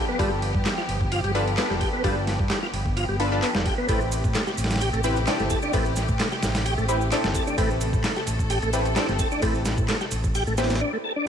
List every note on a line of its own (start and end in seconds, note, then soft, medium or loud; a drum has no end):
0.00 3.85 F3 medium
0.00 3.85 B3 medium
0.00 0.16 D4 medium
0.00 0.16 F4 medium
0.00 3.84 G4 medium
0.00 0.16 A4 medium
0.00 0.16 B4 loud
0.09 0.18 B3 medium
0.19 0.51 G1 medium
0.19 0.31 G3 loud
0.19 1.32 D4 medium
0.19 1.32 F4 medium
0.19 1.32 A4 medium
0.19 1.32 B4 medium
0.19 kick loud
0.19 ride medium
0.42 ride medium
0.55 0.64 G2 medium
0.55 kick medium
0.65 0.74 G3 medium
0.65 snare loud
0.65 clap loud
0.65 ride medium
0.78 0.82 F4 medium
0.78 snare soft
0.88 1.21 G1 medium
0.88 ride medium
1.01 kick medium
1.12 1.20 F4 loud
1.12 ride medium
1.24 1.55 G1 medium
1.24 1.31 G3 medium
1.24 ride soft
1.35 1.46 D4 medium
1.35 1.46 F4 medium
1.35 1.46 A4 medium
1.35 1.46 B4 loud
1.35 ride medium
1.48 ride soft
1.57 1.69 B3 medium
1.57 2.01 D4 medium
1.57 2.01 F4 medium
1.57 2.01 A4 medium
1.57 2.01 B4 loud
1.57 snare loud
1.57 clap loud
1.57 ride medium
1.70 1.79 F1 loud
1.70 1.75 G3 medium
1.70 snare soft
1.80 1.89 G4 medium
1.80 kick medium
1.80 ride medium
1.93 2.03 B3 medium
2.04 2.36 G1 medium
2.04 2.16 G3 loud
2.04 3.17 D4 medium
2.04 3.17 F4 medium
2.04 3.17 A4 medium
2.04 3.17 B4 medium
2.04 kick loud
2.04 ride medium
2.27 snare medium
2.27 ride medium
2.39 2.48 G2 medium
2.39 kick medium
2.50 2.59 G3 medium
2.50 snare loud
2.50 clap loud
2.50 ride medium
2.62 2.67 F4 medium
2.62 snare soft
2.73 3.05 G1 medium
2.73 ride medium
2.86 kick medium
2.97 3.05 F4 loud
2.97 ride medium
3.08 3.39 G1 medium
3.08 3.16 G3 medium
3.19 3.30 D4 medium
3.19 3.30 F4 medium
3.19 3.30 A4 medium
3.19 3.30 B4 loud
3.19 ride medium
3.32 3.86 D4 medium
3.32 3.86 F4 medium
3.32 3.86 A4 medium
3.32 3.86 B4 medium
3.42 3.54 B3 medium
3.42 clap loud
3.42 ride medium
3.55 3.64 F1 medium
3.55 3.59 G3 medium
3.55 snare loud
3.65 3.74 G4 medium
3.65 kick medium
3.65 ride medium
3.78 3.87 B3 medium
3.88 4.21 A1 medium
3.88 10.77 C3 medium
3.88 4.00 A3 loud
3.88 10.77 A3 medium
3.88 5.01 C4 medium
3.88 5.01 E4 medium
3.88 7.54 G4 medium
3.88 5.02 G4 medium
3.88 5.01 B4 medium
3.88 kick loud
3.88 ride medium
3.88 shaker soft
4.01 shaker soft
4.12 ride medium
4.12 shaker medium
4.24 4.33 A2 medium
4.24 kick medium
4.24 shaker soft
4.35 4.43 A3 medium
4.35 snare loud
4.35 clap loud
4.35 ride medium
4.35 shaker soft
4.47 4.51 G4 medium
4.47 snare soft
4.47 shaker soft
4.58 4.90 A1 medium
4.58 ride medium
4.58 shaker medium
4.64 snare medium
4.64 ride medium
4.70 snare medium
4.70 ride medium
4.70 shaker soft
4.76 snare medium
4.76 ride medium
4.81 4.89 G4 loud
4.81 ride medium
4.81 shaker soft
4.93 5.24 A1 medium
4.93 5.01 A3 medium
4.93 ride soft
4.93 shaker soft
5.04 5.15 C4 medium
5.04 5.15 E4 medium
5.04 5.15 G4 medium
5.04 5.15 B4 loud
5.04 ride medium
5.04 shaker medium
5.16 ride soft
5.16 shaker soft
5.27 5.71 C4 medium
5.27 5.38 D4 medium
5.27 5.71 E4 medium
5.27 5.71 G4 medium
5.27 5.71 A4 loud
5.27 snare loud
5.27 clap loud
5.27 ride medium
5.27 shaker soft
5.39 5.48 G1 medium
5.39 5.44 A3 medium
5.39 snare soft
5.39 shaker soft
5.50 5.59 A4 medium
5.50 kick medium
5.50 ride medium
5.50 shaker medium
5.62 5.72 D4 medium
5.62 shaker soft
5.73 6.05 A1 medium
5.73 5.85 A3 loud
5.73 6.86 C4 medium
5.73 6.86 E4 medium
5.73 6.86 G4 medium
5.73 6.86 B4 medium
5.73 kick loud
5.73 ride medium
5.73 shaker soft
5.85 shaker soft
5.96 snare medium
5.96 ride medium
5.96 shaker medium
6.08 6.18 A2 medium
6.08 kick medium
6.08 shaker soft
6.19 6.28 A3 medium
6.19 snare loud
6.19 clap loud
6.19 ride medium
6.19 shaker soft
6.32 6.36 G4 medium
6.32 snare soft
6.32 shaker soft
6.43 6.75 A1 medium
6.43 snare loud
6.43 ride medium
6.43 shaker medium
6.55 snare loud
6.55 ride medium
6.55 shaker soft
6.66 6.74 G4 loud
6.66 ride medium
6.66 shaker soft
6.78 7.09 A1 medium
6.78 6.85 A3 medium
6.78 shaker soft
6.88 7.00 C4 medium
6.88 7.00 E4 medium
6.88 7.00 G4 medium
6.88 7.00 B4 loud
6.88 shaker medium
7.01 shaker soft
7.12 7.55 C4 medium
7.12 7.23 D4 medium
7.12 7.55 E4 medium
7.12 7.55 G4 medium
7.12 7.55 A4 loud
7.12 clap loud
7.12 ride medium
7.12 shaker soft
7.24 7.33 G1 medium
7.24 7.29 A3 medium
7.24 snare loud
7.24 shaker soft
7.35 7.43 A4 medium
7.35 kick medium
7.35 ride medium
7.35 shaker medium
7.47 7.57 D4 medium
7.47 shaker soft
7.58 7.90 A1 loud
7.58 7.69 A3 loud
7.58 8.71 C4 medium
7.58 8.70 E4 medium
7.58 8.70 G4 medium
7.58 10.78 A4 medium
7.58 8.70 B4 medium
7.58 kick loud
7.58 ride medium
7.58 shaker soft
7.70 shaker soft
7.81 ride medium
7.81 shaker medium
7.93 8.02 A2 medium
7.93 kick loud
7.93 shaker soft
8.04 8.13 A3 medium
8.04 snare loud
8.04 clap loud
8.04 ride medium
8.04 shaker soft
8.16 8.21 G4 medium
8.16 snare soft
8.16 shaker soft
8.27 8.59 A1 medium
8.27 ride medium
8.27 shaker medium
8.39 kick medium
8.39 shaker soft
8.50 8.59 G4 loud
8.50 ride medium
8.50 shaker soft
8.62 8.93 A1 medium
8.62 8.70 A3 medium
8.62 ride soft
8.62 shaker soft
8.73 8.84 C4 medium
8.73 8.84 E4 medium
8.73 8.84 G4 medium
8.73 8.84 B4 loud
8.73 ride medium
8.73 shaker medium
8.85 ride soft
8.85 shaker soft
8.96 9.40 C4 medium
8.96 9.07 D4 medium
8.96 9.40 E4 medium
8.96 9.40 G4 medium
8.96 9.40 A4 loud
8.96 snare loud
8.96 clap medium
8.96 ride medium
8.96 shaker soft
9.08 9.18 G1 loud
9.08 9.13 A3 medium
9.08 snare soft
9.08 shaker soft
9.19 9.28 A4 medium
9.19 kick loud
9.19 ride medium
9.19 shaker medium
9.31 9.41 D4 medium
9.31 shaker soft
9.42 9.74 A1 medium
9.42 9.54 A3 loud
9.42 10.55 C4 medium
9.42 10.55 E4 medium
9.42 10.55 G4 medium
9.42 10.55 B4 medium
9.42 kick loud
9.42 ride medium
9.42 shaker soft
9.55 shaker soft
9.65 snare loud
9.65 ride medium
9.65 shaker medium
9.78 9.87 A2 medium
9.78 kick loud
9.78 shaker soft
9.88 9.97 A3 medium
9.88 snare loud
9.88 clap loud
9.88 ride medium
9.88 shaker soft
10.01 10.05 G4 medium
10.01 snare soft
10.01 shaker soft
10.11 10.44 A1 medium
10.11 ride medium
10.11 shaker medium
10.24 kick medium
10.24 shaker soft
10.35 10.43 G4 loud
10.35 ride medium
10.35 shaker soft
10.47 10.78 A1 medium
10.47 10.55 A3 medium
10.47 shaker soft
10.58 10.69 C4 medium
10.58 10.69 E4 medium
10.58 10.69 G4 medium
10.58 10.69 B4 loud
10.58 snare medium
10.58 ride medium
10.58 shaker medium
10.64 snare medium
10.64 ride medium
10.70 snare medium
10.70 ride medium
10.70 shaker soft
10.75 snare medium
10.75 ride medium
10.81 10.92 D4 medium
10.93 10.98 A3 medium
11.04 11.13 A4 medium
11.16 11.26 D4 medium